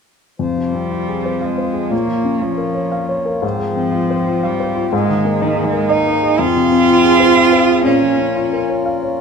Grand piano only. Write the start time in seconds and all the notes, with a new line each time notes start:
0.39 F2
0.57 C3
0.74 C4
0.92 F4
1.09 G#4
1.25 C5
1.41 F5
1.58 C5
1.73 G#4
1.90 A#2
2.08 F3
2.24 C#4
2.41 F4
2.58 A#4
2.74 C#5
2.92 F5
3.09 C#5
3.25 A#4
3.42 G#2
3.59 G#3
3.76 C4
3.92 F4
4.10 C5
4.26 F4
4.43 F5
4.60 C5
4.75 F4
4.93 G#2
5.09 D#3
5.25 A#3
5.42 D#4
5.58 G#4
5.73 A#4
5.90 D#5
6.07 A#4
6.23 G#4
6.39 F2
6.56 C3
6.72 C4
6.88 F4
7.04 G#4
7.20 C5
7.36 F5
7.52 C5
7.68 G#4
7.85 A#2
8.02 F3
8.18 C#4
8.36 F4
8.53 A#4
8.69 C#5
8.86 F5
9.03 C#5